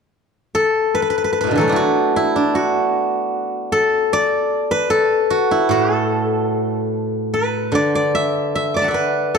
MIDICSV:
0, 0, Header, 1, 2, 480
1, 0, Start_track
1, 0, Tempo, 802139
1, 787, Time_signature, 2, 2, 24, 8
1, 1761, Tempo, 786370
1, 3681, Tempo, 814111
1, 5622, End_track
2, 0, Start_track
2, 0, Title_t, "Guzheng"
2, 0, Program_c, 0, 107
2, 328, Note_on_c, 0, 69, 73
2, 566, Note_on_c, 0, 71, 66
2, 609, Note_off_c, 0, 71, 0
2, 612, Note_on_c, 0, 71, 46
2, 655, Note_off_c, 0, 71, 0
2, 658, Note_on_c, 0, 71, 54
2, 702, Note_off_c, 0, 71, 0
2, 704, Note_on_c, 0, 71, 42
2, 741, Note_off_c, 0, 71, 0
2, 744, Note_on_c, 0, 71, 47
2, 791, Note_off_c, 0, 71, 0
2, 793, Note_on_c, 0, 71, 44
2, 839, Note_off_c, 0, 71, 0
2, 842, Note_on_c, 0, 71, 58
2, 859, Note_on_c, 0, 45, 24
2, 879, Note_on_c, 0, 47, 26
2, 903, Note_on_c, 0, 50, 30
2, 930, Note_on_c, 0, 52, 33
2, 940, Note_off_c, 0, 69, 0
2, 942, Note_on_c, 0, 69, 59
2, 952, Note_on_c, 0, 54, 35
2, 964, Note_on_c, 0, 57, 35
2, 1000, Note_off_c, 0, 47, 0
2, 1004, Note_on_c, 0, 59, 38
2, 1013, Note_on_c, 0, 62, 42
2, 1030, Note_on_c, 0, 64, 46
2, 1040, Note_off_c, 0, 45, 0
2, 1049, Note_off_c, 0, 52, 0
2, 1054, Note_on_c, 0, 66, 65
2, 1066, Note_off_c, 0, 50, 0
2, 1066, Note_off_c, 0, 54, 0
2, 1292, Note_off_c, 0, 64, 0
2, 1295, Note_on_c, 0, 64, 60
2, 1409, Note_off_c, 0, 62, 0
2, 1411, Note_on_c, 0, 62, 53
2, 1524, Note_off_c, 0, 66, 0
2, 1526, Note_on_c, 0, 66, 59
2, 2072, Note_off_c, 0, 71, 0
2, 2234, Note_off_c, 0, 69, 0
2, 2237, Note_on_c, 0, 69, 71
2, 2486, Note_on_c, 0, 74, 79
2, 2840, Note_on_c, 0, 71, 79
2, 2878, Note_off_c, 0, 64, 0
2, 2882, Note_off_c, 0, 59, 0
2, 2954, Note_off_c, 0, 69, 0
2, 2956, Note_on_c, 0, 69, 78
2, 2980, Note_off_c, 0, 57, 0
2, 3006, Note_off_c, 0, 66, 0
2, 3114, Note_off_c, 0, 62, 0
2, 3202, Note_on_c, 0, 66, 69
2, 3329, Note_on_c, 0, 64, 58
2, 3437, Note_on_c, 0, 45, 45
2, 3447, Note_off_c, 0, 69, 0
2, 3449, Note_off_c, 0, 66, 0
2, 3449, Note_on_c, 0, 66, 62
2, 3596, Note_off_c, 0, 66, 0
2, 3596, Note_on_c, 0, 69, 62
2, 3614, Note_off_c, 0, 74, 0
2, 4075, Note_off_c, 0, 71, 0
2, 4417, Note_on_c, 0, 71, 53
2, 4642, Note_on_c, 0, 50, 42
2, 4644, Note_off_c, 0, 45, 0
2, 4661, Note_on_c, 0, 74, 65
2, 4752, Note_off_c, 0, 69, 0
2, 4778, Note_off_c, 0, 74, 0
2, 4781, Note_on_c, 0, 74, 68
2, 4880, Note_off_c, 0, 64, 0
2, 4895, Note_on_c, 0, 76, 76
2, 5133, Note_off_c, 0, 76, 0
2, 5135, Note_on_c, 0, 76, 69
2, 5246, Note_on_c, 0, 86, 31
2, 5257, Note_off_c, 0, 74, 0
2, 5259, Note_on_c, 0, 74, 68
2, 5273, Note_on_c, 0, 83, 31
2, 5290, Note_on_c, 0, 81, 36
2, 5304, Note_on_c, 0, 78, 38
2, 5325, Note_off_c, 0, 76, 0
2, 5327, Note_on_c, 0, 76, 39
2, 5340, Note_off_c, 0, 74, 0
2, 5343, Note_on_c, 0, 74, 38
2, 5361, Note_off_c, 0, 71, 0
2, 5363, Note_on_c, 0, 71, 60
2, 5601, Note_on_c, 0, 69, 76
2, 5622, Note_off_c, 0, 50, 0
2, 5622, Note_off_c, 0, 69, 0
2, 5622, Note_off_c, 0, 71, 0
2, 5622, Note_off_c, 0, 74, 0
2, 5622, Note_off_c, 0, 76, 0
2, 5622, Note_off_c, 0, 78, 0
2, 5622, Note_off_c, 0, 81, 0
2, 5622, Note_off_c, 0, 83, 0
2, 5622, Note_off_c, 0, 86, 0
2, 5622, End_track
0, 0, End_of_file